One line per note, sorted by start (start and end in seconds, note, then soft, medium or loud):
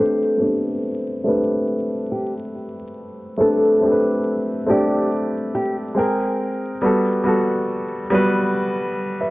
0.00 0.33 A3 medium
0.00 0.34 C4 medium
0.00 0.35 D4 medium
0.00 0.35 G4 medium
0.00 1.26 A4 medium
0.00 0.36 B4 medium
0.00 0.19 C5 medium
0.38 1.14 A3 medium
0.38 0.46 B3 soft
0.38 1.15 D4 medium
0.38 1.16 G4 medium
0.38 1.16 B4 medium
0.45 1.18 C4 medium
1.24 2.76 A3 medium
1.24 2.76 C4 medium
1.24 2.77 D4 medium
1.24 1.64 G4 medium
1.24 2.78 G4 medium
1.28 2.78 B4 medium
2.12 2.33 G4 medium
3.37 3.76 A3 medium
3.37 3.77 C4 medium
3.37 3.77 D4 medium
3.37 3.78 G4 medium
3.37 4.64 A4 medium
3.42 3.78 B4 medium
3.81 4.57 A3 medium
3.81 4.58 C4 medium
3.81 4.58 D4 medium
3.81 4.59 G4 medium
3.85 3.91 A4 medium
3.92 4.63 B4 medium
4.66 5.95 A3 medium
4.66 5.94 C4 medium
4.66 5.96 D4 medium
4.66 5.97 G4 medium
4.66 5.07 G4 medium
4.66 5.97 D5 medium
5.55 5.76 G4 medium
5.95 6.71 G#3 medium
5.95 6.72 C4 medium
5.95 6.36 G#4 medium
5.95 6.73 G5 medium
5.99 6.73 A#4 medium
6.82 7.20 G3 medium
6.82 7.20 B3 medium
6.82 7.21 F#4 medium
6.82 7.22 A4 medium
7.24 8.00 G3 medium
7.24 8.01 B3 medium
7.24 8.01 F#4 medium
7.28 8.02 A4 medium
8.10 9.30 G3 medium
8.10 9.30 B3 medium
8.10 9.30 F#4 medium
8.14 8.55 B4 loud
9.21 9.30 B4 soft
9.21 9.30 E5 medium